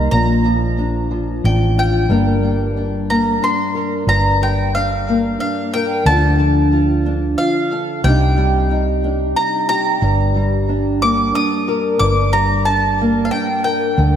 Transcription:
0.00 0.78 A#3 medium
0.00 0.10 A#5 medium
0.11 1.40 A#1 medium
0.11 2.06 A#2 medium
0.11 1.73 A#5 medium
0.45 1.10 F3 medium
0.79 1.44 D4 medium
1.11 2.09 F3 medium
1.44 2.07 A1 medium
1.44 2.06 D4 medium
1.44 1.78 G5 medium
1.78 2.06 F4 medium
1.78 3.10 G5 medium
2.09 3.38 G1 medium
2.09 4.06 G2 medium
2.09 2.42 G3 medium
2.09 3.10 A#3 medium
2.09 2.77 D4 medium
2.09 3.74 A#4 medium
2.43 4.04 G3 soft
2.77 3.42 D4 soft
3.10 5.08 A#3 medium
3.10 3.43 A#5 medium
3.42 4.75 D4 medium
3.42 4.08 C6 medium
3.75 4.04 A#4 medium
4.07 5.35 G1 medium
4.07 6.06 G2 medium
4.07 4.42 A#5 medium
4.42 6.02 G3 medium
4.42 4.74 G5 medium
4.75 5.41 D4 medium
4.75 5.36 F5 medium
5.09 6.07 A#3 medium
5.40 6.08 D4 medium
5.40 5.73 F5 medium
5.74 6.03 A#4 medium
5.74 6.04 G5 medium
6.06 7.34 D2 medium
6.06 8.01 D3 medium
6.06 6.39 F3 medium
6.06 7.06 D4 medium
6.06 6.71 F4 medium
6.06 7.71 A4 medium
6.06 7.37 A5 medium
6.40 8.05 F3 medium
6.73 7.38 F4 medium
7.06 8.06 D4 medium
7.38 8.01 F4 medium
7.38 8.04 F5 medium
7.72 8.01 A4 medium
8.04 9.32 C2 medium
8.04 10.03 C3 medium
8.04 8.37 G3 medium
8.04 9.04 D4 medium
8.04 8.70 D#4 medium
8.04 9.69 G4 medium
8.04 9.36 G5 medium
8.38 10.35 G3 medium
8.71 9.36 D#4 medium
9.04 10.69 D4 medium
9.36 9.99 D#4 medium
9.36 9.67 A#5 medium
9.69 11.68 G4 medium
9.69 11.02 A#5 medium
10.02 11.30 G1 medium
10.02 11.99 G2 medium
10.36 11.97 G3 medium
10.69 11.34 D4 medium
11.02 13.00 A#3 medium
11.02 11.35 D6 medium
11.35 12.67 D4 medium
11.35 11.99 D#6 medium
11.68 11.97 A#4 medium
11.99 13.29 G1 medium
11.99 13.99 G2 medium
11.99 12.32 D6 medium
12.33 13.95 G3 medium
12.33 12.65 A#5 medium
12.65 13.32 D4 medium
12.65 13.21 A5 medium
13.01 14.00 A#3 medium
13.25 13.31 F5 medium
13.31 14.16 D4 medium
13.31 13.63 G5 medium
13.64 13.94 A#4 medium
13.64 14.16 G5 medium
13.98 14.16 D2 medium
13.98 14.16 D3 medium

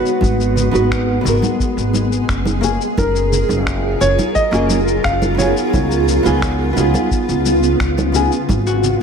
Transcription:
0.00 2.60 G#3 medium
0.00 0.68 B3 medium
0.00 2.60 B3 medium
0.00 0.69 D#4 medium
0.00 0.19 F#4 medium
0.00 0.70 F#4 medium
0.00 0.71 B4 medium
0.00 1.21 B4 medium
0.06 shaker soft
0.21 0.69 G#1 medium
0.21 5.70 G#4 medium
0.21 kick loud
0.21 high conga medium
0.21 shaker soft
0.41 shaker soft
0.56 low conga medium
0.56 shaker medium
0.71 1.20 G#1 medium
0.71 1.20 B3 medium
0.71 1.21 D#4 medium
0.71 1.21 F#4 medium
0.71 high conga medium
0.71 shaker soft
0.75 1.22 B4 loud
0.91 finger snap medium
0.91 kick loud
0.91 shaker soft
1.21 2.57 B3 medium
1.21 2.58 D#4 medium
1.21 low conga medium
1.25 1.40 G#1 medium
1.25 2.59 F#4 medium
1.25 2.61 A#4 medium
1.25 shaker medium
1.42 high conga medium
1.42 shaker soft
1.60 kick loud
1.60 shaker soft
1.77 2.24 G#1 medium
1.77 shaker soft
1.93 high conga medium
1.93 shaker medium
2.12 shaker soft
2.29 2.76 F#1 medium
2.29 finger snap medium
2.29 kick loud
2.29 shaker soft
2.45 high conga medium
2.45 shaker soft
2.61 5.71 F#3 medium
2.61 2.79 A#3 medium
2.61 2.79 C#4 medium
2.61 2.80 F4 medium
2.61 8.46 F4 medium
2.61 2.80 G#4 medium
2.61 5.71 A#4 medium
2.61 low conga medium
2.61 shaker medium
2.81 shaker soft
2.98 3.45 F#1 loud
2.98 4.05 A#4 medium
2.98 kick medium
2.98 high conga medium
2.98 shaker soft
3.16 shaker soft
3.32 low conga medium
3.32 shaker medium
3.49 3.96 F#1 medium
3.49 high conga medium
3.49 shaker soft
3.67 finger snap medium
3.67 kick loud
3.67 shaker soft
4.00 4.16 F#1 medium
4.00 4.33 C#5 medium
4.00 low conga medium
4.00 shaker medium
4.19 high conga medium
4.19 shaker soft
4.35 5.06 D#5 loud
4.35 kick loud
4.35 shaker soft
4.51 5.00 F#1 medium
4.51 4.78 A#3 medium
4.51 4.79 C#4 medium
4.51 4.79 F4 medium
4.51 4.80 G#4 loud
4.51 finger snap soft
4.51 shaker soft
4.70 high conga medium
4.70 shaker medium
4.88 shaker soft
5.04 5.51 F#1 medium
5.04 5.40 F5 loud
5.04 finger snap loud
5.04 kick loud
5.04 shaker soft
5.22 high conga medium
5.22 shaker soft
5.35 6.19 B3 medium
5.35 6.21 D#4 medium
5.35 6.73 C#5 medium
5.39 6.22 F4 medium
5.39 6.23 G#4 medium
5.39 low conga medium
5.39 shaker medium
5.57 shaker soft
5.73 6.20 C#2 medium
5.73 8.47 C#3 medium
5.73 8.47 B3 medium
5.73 kick loud
5.73 high conga medium
5.73 shaker soft
5.91 shaker soft
6.08 low conga medium
6.08 shaker medium
6.23 6.72 C#2 medium
6.23 6.72 B3 medium
6.23 6.72 D#4 medium
6.23 6.73 F4 medium
6.23 6.74 G#4 loud
6.23 high conga medium
6.23 shaker soft
6.42 finger snap medium
6.42 kick loud
6.42 shaker soft
6.73 6.91 C#2 medium
6.73 8.09 B3 medium
6.73 8.10 D#4 medium
6.73 low conga medium
6.77 8.11 F4 medium
6.77 8.13 G#4 medium
6.77 shaker medium
6.94 high conga medium
6.94 shaker soft
7.11 kick loud
7.11 shaker soft
7.29 7.75 C#2 medium
7.29 shaker soft
7.46 high conga medium
7.46 shaker medium
7.63 shaker soft
7.80 8.27 C#2 medium
7.80 finger snap medium
7.80 kick loud
7.80 shaker soft
7.98 high conga medium
7.98 shaker soft
8.12 8.30 B3 medium
8.12 8.31 D#4 medium
8.12 8.31 F4 medium
8.12 8.32 G#4 medium
8.12 low conga medium
8.12 shaker medium
8.32 shaker soft
8.49 8.96 G#1 medium
8.49 9.03 G#3 medium
8.49 9.03 B3 medium
8.49 9.03 F#4 medium
8.49 kick loud
8.49 high conga medium
8.49 shaker soft
8.67 9.01 F#4 medium
8.67 shaker soft
8.83 low conga medium
8.83 shaker medium

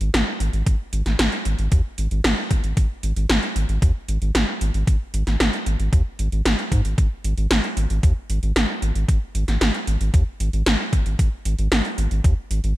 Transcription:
0.01 0.10 G#1 medium
0.01 closed hi-hat medium
0.14 0.23 G#1 loud
0.14 snare loud
0.14 closed hi-hat medium
0.40 0.50 G#1 medium
0.40 closed hi-hat medium
0.53 0.63 G#1 medium
0.53 closed hi-hat medium
0.66 0.76 G#1 loud
0.66 kick loud
0.66 closed hi-hat medium
0.93 1.02 G#1 medium
0.93 closed hi-hat medium
1.06 1.15 G#1 medium
1.06 snare soft
1.06 closed hi-hat medium
1.19 1.29 G#1 loud
1.19 snare loud
1.19 closed hi-hat medium
1.32 closed hi-hat soft
1.45 1.55 G#1 medium
1.45 closed hi-hat medium
1.59 1.68 G#1 medium
1.59 closed hi-hat medium
1.72 1.81 D#2 loud
1.72 kick loud
1.72 closed hi-hat medium
1.98 2.08 G#1 medium
1.98 closed hi-hat medium
2.11 2.21 G#1 medium
2.11 closed hi-hat medium
2.24 2.34 G#1 loud
2.24 snare loud
2.24 closed hi-hat medium
2.51 2.60 G#1 medium
2.51 kick loud
2.51 closed hi-hat medium
2.64 2.73 G#1 medium
2.64 closed hi-hat medium
2.77 2.86 G#1 loud
2.77 kick loud
2.77 closed hi-hat medium
3.03 3.13 G#1 medium
3.03 closed hi-hat medium
3.16 3.26 G#1 medium
3.16 closed hi-hat medium
3.29 3.39 G#1 loud
3.29 snare loud
3.29 closed hi-hat medium
3.43 closed hi-hat soft
3.56 3.65 G#1 medium
3.56 closed hi-hat medium
3.69 3.78 G#1 medium
3.69 closed hi-hat medium
3.82 3.92 D#2 loud
3.82 kick loud
3.82 closed hi-hat medium
4.08 4.18 G#1 medium
4.08 closed hi-hat medium
4.22 4.31 G#1 medium
4.22 closed hi-hat soft
4.35 4.44 G#1 loud
4.35 snare loud
4.35 closed hi-hat medium
4.61 4.71 G#1 medium
4.61 closed hi-hat medium
4.74 4.84 G#1 medium
4.74 closed hi-hat medium
4.87 4.97 G#1 loud
4.87 kick loud
4.87 closed hi-hat medium
5.14 5.23 G#1 medium
5.14 closed hi-hat medium
5.27 5.36 G#1 medium
5.27 snare soft
5.27 closed hi-hat medium
5.40 5.50 G#1 loud
5.40 snare loud
5.40 closed hi-hat medium
5.53 closed hi-hat soft
5.66 5.76 G#1 medium
5.66 closed hi-hat medium
5.80 5.89 G#1 medium
5.80 closed hi-hat medium
5.93 6.02 D#2 loud
5.93 kick loud
5.93 closed hi-hat medium
6.19 6.29 G#1 medium
6.19 closed hi-hat medium
6.32 6.42 G#1 medium
6.32 closed hi-hat soft
6.45 6.55 G#1 loud
6.45 snare loud
6.45 closed hi-hat medium
6.59 closed hi-hat soft
6.72 6.81 G#2 medium
6.72 kick loud
6.72 closed hi-hat medium
6.85 6.94 G#1 medium
6.85 closed hi-hat soft
6.98 7.07 G#1 loud
6.98 kick loud
6.98 closed hi-hat medium
7.24 7.34 G#1 medium
7.24 closed hi-hat medium
7.38 7.47 G#1 medium
7.38 closed hi-hat soft
7.51 7.60 G#1 medium
7.51 snare loud
7.51 closed hi-hat medium
7.64 closed hi-hat soft
7.77 7.86 G#1 medium
7.77 closed hi-hat medium
7.90 8.00 G#1 medium
7.90 closed hi-hat soft
8.03 8.13 D#2 loud
8.03 kick loud
8.03 closed hi-hat medium
8.30 8.39 G#1 medium
8.30 closed hi-hat medium
8.43 8.52 G#1 medium
8.43 closed hi-hat soft
8.56 8.65 G#1 loud
8.56 snare loud
8.56 closed hi-hat medium
8.82 8.92 G#1 medium
8.82 closed hi-hat medium
8.95 9.05 G#1 medium
8.95 closed hi-hat medium
9.08 9.18 G#1 loud
9.08 kick loud
9.08 closed hi-hat medium
9.35 9.44 G#1 medium
9.35 closed hi-hat medium
9.48 9.57 G#1 medium
9.48 snare soft
9.48 closed hi-hat soft
9.61 9.71 G#1 loud
9.61 snare loud
9.61 closed hi-hat medium
9.74 closed hi-hat soft
9.87 9.97 G#1 medium
9.87 closed hi-hat medium
10.01 10.10 G#1 medium
10.01 closed hi-hat medium
10.14 10.23 D#2 loud
10.14 kick loud
10.14 closed hi-hat medium
10.40 10.50 G#1 medium
10.40 closed hi-hat medium
10.53 10.63 G#1 medium
10.53 closed hi-hat soft
10.66 10.76 G#1 loud
10.66 snare loud
10.66 closed hi-hat medium
10.93 11.02 G#1 medium
10.93 kick loud
10.93 closed hi-hat medium
11.06 11.15 G#1 medium
11.06 closed hi-hat medium
11.19 11.28 G#1 loud
11.19 kick loud
11.19 closed hi-hat medium
11.45 11.55 G#1 medium
11.45 closed hi-hat medium
11.59 11.68 G#1 medium
11.59 closed hi-hat medium
11.72 11.81 G#1 loud
11.72 snare loud
11.72 closed hi-hat medium
11.85 closed hi-hat soft
11.98 12.08 G#1 medium
11.98 closed hi-hat medium
12.11 12.21 G#1 medium
12.11 closed hi-hat soft
12.24 12.34 D#2 loud
12.24 kick loud
12.24 closed hi-hat medium
12.51 12.60 G#1 loud
12.51 closed hi-hat medium
12.64 12.73 G#1 medium
12.64 closed hi-hat soft

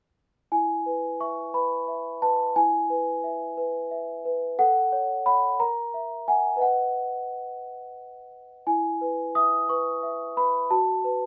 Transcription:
0.52 2.52 E4 soft
0.52 1.20 G#5 medium
0.86 1.40 B4 soft
1.20 1.75 E5 soft
1.20 1.54 C#6 medium
1.54 2.08 B4 soft
1.54 2.22 B5 medium
1.88 2.42 E5 soft
2.22 2.56 B4 soft
2.22 2.56 A5 medium
2.56 4.55 E4 soft
2.56 4.59 G#5 medium
2.90 3.44 B4 soft
3.24 3.78 E5 soft
3.57 4.11 B4 soft
3.91 4.45 E5 soft
4.25 4.59 B4 soft
4.59 5.57 A4 medium
4.59 5.25 F#5 medium
4.92 5.25 C#5 medium
5.26 5.56 C#5 soft
5.26 5.56 F#5 soft
5.26 5.60 B5 medium
5.60 6.58 A#4 medium
5.60 6.27 A#5 medium
5.94 6.27 E5 soft
6.28 6.58 E5 soft
6.28 6.58 F#5 soft
6.28 6.62 G#5 medium
6.56 8.60 B4 soft
6.56 8.61 D#5 soft
6.62 8.33 F#5 medium
8.67 10.66 E4 medium
8.67 9.35 G#5 medium
9.01 9.56 B4 soft
9.35 9.89 E5 soft
9.35 9.69 D#6 medium
9.69 10.23 B4 soft
9.69 10.37 C#6 medium
10.03 10.57 E5 soft
10.37 10.71 B4 soft
10.37 10.71 B5 medium
10.71 11.26 F#4 medium
10.71 11.26 A5 medium
11.04 11.26 B4 soft

